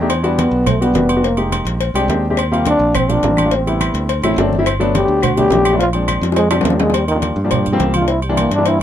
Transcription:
Already playing: fingered electric bass E2
0.01 grand piano A3 D4 D#4 G4
0.10 cowbell, high conga, low agogo
0.23 grand piano G3 B3 D4 F#4, high conga, low agogo
0.39 trombone B3, cowbell, high conga, low timbale, low agogo
0.51 fingered electric bass B1, high conga
0.66 trombone A3, cowbell, high conga, low conga, low agogo
0.81 grand piano G3 B3 D4 F#4, trombone B3, high conga, low agogo
0.94 fingered electric bass F1, grand piano G3 B3 D4 F#4, cowbell, high conga, low timbale
1.09 low agogo
1.16 grand piano G3 B3 D4 F#4
1.24 trombone A#3, cowbell
1.37 grand piano G#3 A#3 D#4 G4, high conga, low agogo
1.52 cowbell, high conga, low timbale, low agogo
1.65 fingered electric bass A#1, cowbell, high conga
1.81 cowbell, high conga, low agogo
1.94 fingered electric bass C2, grand piano G#3 C4 D4 G4, high conga, low agogo
2.08 fingered electric bass D#2, grand piano G#3 C4 D4 G4, cowbell, high conga, low timbale
2.30 grand piano G#3 C4 D4 G4
2.37 cowbell, high conga, low agogo, claves
2.52 grand piano G3 A#3 C4 F4, high conga, low agogo
2.66 trombone D4, cowbell, high conga, low timbale, low agogo
2.79 fingered electric bass A#1, high conga
2.95 trombone C4, cowbell, high conga, low conga, low agogo, claves
3.09 grand piano G3 A#3 C4 F4, trombone D4, high conga, low conga, low agogo
3.23 fingered electric bass A1, grand piano G3 A#3 C4 F4, cowbell, high conga, low timbale
3.37 high conga, low agogo, claves
3.45 grand piano G3 A#3 C4 F4
3.51 trombone C4, cowbell
3.67 grand piano G3 B3 C4 E4, high conga, low agogo
3.81 cowbell, high conga, low timbale, low agogo, claves
3.94 fingered electric bass D2, cowbell, high conga
4.09 cowbell, high conga, low agogo
4.22 fingered electric bass A1, grand piano F#3 A3 C4 E4, low agogo, claves
4.36 fingered electric bass G1, grand piano F#3 A3 C4 D4, cowbell, high conga, low timbale
4.52 high conga
4.58 grand piano F#3 A3 C4 E4
4.66 cowbell, low agogo, claves
4.80 grand piano F#3 A3 B3 D4, high conga, low agogo
4.95 trombone G4, cowbell, high conga, low timbale, low agogo
5.08 fingered electric bass D2, high conga
5.23 trombone F#4, cowbell, high conga, low conga, low agogo, claves
5.36 grand piano F#3 A3 B3 D4, trombone G4, high conga, low conga, low agogo
5.50 fingered electric bass A#1, grand piano F#3 A3 B3 D4, cowbell, high conga, low timbale
5.65 low agogo, claves
5.73 grand piano F#3 A3 B3 D4
5.79 trombone F4, cowbell, high conga
5.93 grand piano F3 G#3 C4 D4, high conga, low agogo
6.08 cowbell, high conga, low timbale, low agogo, claves
6.21 fingered electric bass F2, cowbell, high bongo, high conga
6.32 high bongo
6.36 trombone G#3, cowbell, high conga, high timbale, low agogo
6.51 trombone C3, grand piano F3 G#3 C4 D4, high bongo, high conga, high timbale, low agogo, claves
6.61 fingered electric bass D#2, low bongo
6.65 grand piano F3 G#3 C4 D4, trombone F3, cowbell, low timbale
6.70 low bongo
6.80 trombone G#3, low bongo, low timbale
6.86 grand piano F3 G#3 C4 D4, low bongo
6.94 trombone G3, cowbell, high conga, low agogo
7.08 trombone D#3, high conga, low agogo
7.15 grand piano F3 G3 A#3 D4
7.22 cowbell, high conga, low timbale, low agogo
7.36 fingered electric bass G2, high conga
7.44 grand piano F3 G3 A#3 D4
7.51 cowbell, high conga, low conga, low agogo
7.66 high conga, low conga, low agogo
7.72 grand piano F3 G3 A#3 C4
7.79 fingered electric bass C2, cowbell, high conga, low timbale
7.94 trombone F4, high conga, low agogo
8.01 grand piano F3 G3 A#3 D4
8.08 trombone E4, cowbell, high conga
8.22 trombone G3, high conga, low agogo
8.29 grand piano E3 G3 A#3 D4
8.37 trombone A#3, cowbell, high conga, low timbale, low agogo
8.51 fingered electric bass G2, trombone D4, cowbell, high conga
8.58 grand piano E3 G3 A#3 D4
8.66 trombone E4, cowbell, high conga, low agogo
8.80 fingered electric bass C2

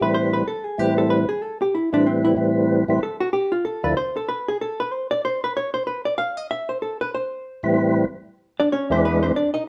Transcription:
0.01 tonewheel organ A2 E3 G3 C4 B4, hollow-body jazz guitar B4
0.14 hollow-body jazz guitar C5
0.33 hollow-body jazz guitar B4
0.48 hollow-body jazz guitar A4
0.65 hollow-body jazz guitar G#4
0.78 tonewheel organ A2 E3 G3 C4 B4, hollow-body jazz guitar G4
0.98 hollow-body jazz guitar A4
1.10 hollow-body jazz guitar B4
1.29 hollow-body jazz guitar G#4
1.43 hollow-body jazz guitar A4
1.62 hollow-body jazz guitar G4
1.75 hollow-body jazz guitar E4
1.93 tonewheel organ A2 E3 G3 C4 B4, hollow-body jazz guitar D4
2.06 hollow-body jazz guitar C4
2.25 hollow-body jazz guitar E4
2.36 tonewheel organ A2 E3 G3 C4 B4
2.88 tonewheel organ A2 E3 G3 C4 B4
3.03 hollow-body jazz guitar A4
3.20 hollow-body jazz guitar F#4
3.33 hollow-body jazz guitar G4
3.52 hollow-body jazz guitar F4
3.65 hollow-body jazz guitar A4
3.83 tonewheel organ D2 D3 F3 E4 A4, hollow-body jazz guitar B4
3.97 hollow-body jazz guitar C5
4.17 hollow-body jazz guitar A4
4.29 hollow-body jazz guitar B4
4.48 hollow-body jazz guitar G#4
4.61 hollow-body jazz guitar A4
4.80 hollow-body jazz guitar B4
4.93 hollow-body jazz guitar C5
5.11 hollow-body jazz guitar D5
5.25 hollow-body jazz guitar C5
5.44 hollow-body jazz guitar B4
5.57 hollow-body jazz guitar C#5
5.74 hollow-body jazz guitar C5
5.87 hollow-body jazz guitar B4
6.05 hollow-body jazz guitar D5
6.18 hollow-body jazz guitar F5
6.37 hollow-body jazz guitar D#5
6.51 hollow-body jazz guitar E5
6.69 hollow-body jazz guitar C5
6.82 hollow-body jazz guitar A4
7.01 hollow-body jazz guitar B4
7.15 hollow-body jazz guitar C5
7.63 tonewheel organ A2 E3 G3 C4 B4
8.60 hollow-body jazz guitar D4 D5
8.72 hollow-body jazz guitar C#4 C#5
8.90 tonewheel organ E2 E3 G#3 D4 B4, hollow-body jazz guitar C4 C5
9.05 hollow-body jazz guitar B3 B4
9.23 hollow-body jazz guitar C4 C5
9.36 hollow-body jazz guitar D4 D5
9.54 hollow-body jazz guitar D#4 D#5

